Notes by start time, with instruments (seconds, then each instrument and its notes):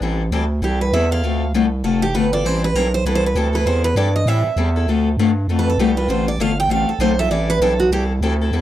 0.01 fm bass A1, steel-string acoustic guitar E3 G3 C4 E4 A4
0.32 fm bass D2, steel-string acoustic guitar E3 G3 C4 E4 A4
0.62 fm bass C2, steel-string acoustic guitar E3 G3 C4 E4 G4 A4
0.81 steel-string acoustic guitar B4
0.93 fm bass E2, steel-string acoustic guitar E3 G3 C4 E4 A4 E5
1.11 steel-string acoustic guitar C4 E4 A4 F5
1.23 fm bass D2, steel-string acoustic guitar D3 A3 C4 F4 A4
1.53 fm bass C2, steel-string acoustic guitar D3 A3 C4 F4 A4
1.83 fm bass F1, steel-string acoustic guitar D3 A3 C4 F4 A4
2.02 steel-string acoustic guitar G4
2.14 fm bass G1, steel-string acoustic guitar D3 A3 C4 F4 A4 B4
2.32 steel-string acoustic guitar C4 F4 A4 D5
2.44 fm bass A1, steel-string acoustic guitar E3 G3 C4 E4 A4 C5
2.64 steel-string acoustic guitar B4
2.75 fm bass B1, steel-string acoustic guitar E3 G3 C4 E4 A4 A#4
2.94 steel-string acoustic guitar C5
3.05 fm bass C2, steel-string acoustic guitar E3 G3 C4 E4 A4 B4
3.15 steel-string acoustic guitar C5
3.26 steel-string acoustic guitar B4
3.35 fm bass D2, steel-string acoustic guitar E3 G3 C4 E4 A4
3.53 steel-string acoustic guitar C4 E4 A4 B4
3.66 fm bass E2, steel-string acoustic guitar E3 G3 C4 E4 A4 C5
3.84 steel-string acoustic guitar B4
3.96 fm bass G2, steel-string acoustic guitar E3 G3 C4 E4 A4 D5
4.16 steel-string acoustic guitar D#5
4.26 fm bass A2, steel-string acoustic guitar E3 G3 C4 E4 A4 E5
4.44 fm bass A2
4.56 fm bass E2, steel-string acoustic guitar E3 G3 C4 E4 A4
4.76 steel-string acoustic guitar C4 E4 A4
4.87 fm bass D2, steel-string acoustic guitar D3 A3 C4 F4 A4
5.17 fm bass G2, steel-string acoustic guitar D3 A3 C4 F4 A4
5.48 fm bass F2, steel-string acoustic guitar D3 A3 C4 F4 A4
5.59 steel-string acoustic guitar B4
5.70 steel-string acoustic guitar A4
5.78 fm bass C2, steel-string acoustic guitar D3 A3 C4 F4 G4 A4
5.97 steel-string acoustic guitar C4 F4 A4 B4
6.08 fm bass A1, steel-string acoustic guitar D3 A3 C4 F4 A4 C5
6.28 steel-string acoustic guitar D5
6.39 fm bass G1, steel-string acoustic guitar D3 A3 C4 F4 A4 F5
6.60 steel-string acoustic guitar G5
6.69 fm bass A1, steel-string acoustic guitar D3 A3 C4 F4 A4 F5
6.87 fm bass A1, steel-string acoustic guitar A4
6.99 fm bass B1, steel-string acoustic guitar D3 A3 C4 F4 A4 C5
7.19 steel-string acoustic guitar C4 F4 A4 E5
7.30 fm bass A1, steel-string acoustic guitar E3 G3 C4 E4 A4 D5
7.50 steel-string acoustic guitar B4
7.60 fm bass B1, steel-string acoustic guitar E3 G3 C4 E4 A4
7.80 steel-string acoustic guitar F#4
7.91 fm bass C2, steel-string acoustic guitar E3 G3 C4 E4 G4 A4
8.21 fm bass D2, steel-string acoustic guitar E3 G3 C4 E4 A4
8.41 steel-string acoustic guitar C4 E4 A4
8.51 fm bass E2, steel-string acoustic guitar E3 G3 C4 E4 A4